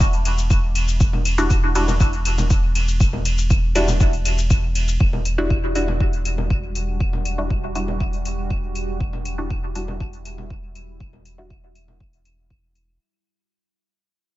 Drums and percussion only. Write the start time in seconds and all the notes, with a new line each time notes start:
0.00 kick, claves, shaker
0.13 open hi-hat
0.25 open hi-hat, ride, claves
0.38 shaker
0.50 kick, claves, shaker
0.75 open hi-hat, ride, claves
0.88 shaker
1.00 kick, claves, shaker
1.13 low conga
1.25 open hi-hat, ride, claves, shaker
1.38 shaker
1.50 kick, claves, shaker
1.75 open hi-hat, ride, claves, shaker
1.88 low conga, shaker
2.00 kick, claves, shaker
2.13 open hi-hat
2.25 open hi-hat, ride, claves
2.38 low conga, shaker
2.50 kick, claves, shaker
2.75 open hi-hat, ride, claves
2.88 shaker
3.00 kick, claves, shaker
3.13 low conga
3.25 open hi-hat, ride, claves, shaker
3.38 shaker
3.50 kick, claves, shaker
3.75 open hi-hat, ride, claves, shaker
3.88 low conga, shaker
4.00 kick, claves, shaker
4.13 open hi-hat
4.25 open hi-hat, ride, claves, shaker
4.38 shaker
4.50 kick, claves, shaker
4.75 open hi-hat, ride, claves
4.88 shaker
5.00 kick, claves
5.13 low conga
5.25 open hi-hat, claves
5.50 kick, claves
5.75 open hi-hat, claves
5.88 low conga
6.00 kick, claves
6.13 open hi-hat
6.25 open hi-hat, claves
6.38 low conga
6.50 kick, claves
6.75 open hi-hat, claves
7.00 kick, claves
7.13 low conga
7.25 open hi-hat, claves
7.50 kick, claves
7.75 open hi-hat, claves
7.88 low conga
8.00 kick, claves
8.13 open hi-hat
8.25 open hi-hat, claves
8.50 kick, claves
8.75 open hi-hat, claves
9.00 kick, claves
9.13 low conga
9.25 open hi-hat, claves
9.50 kick, claves
9.75 open hi-hat, claves
9.88 low conga
10.00 kick, claves
10.13 open hi-hat
10.25 open hi-hat, claves
10.38 low conga
10.50 kick, claves
10.75 open hi-hat, claves
11.00 kick, claves
11.13 low conga
11.25 open hi-hat, claves
11.50 kick, claves
11.75 open hi-hat, claves
11.88 low conga
12.00 kick, claves
12.13 open hi-hat
12.25 open hi-hat, claves
12.50 kick, claves
12.75 open hi-hat, claves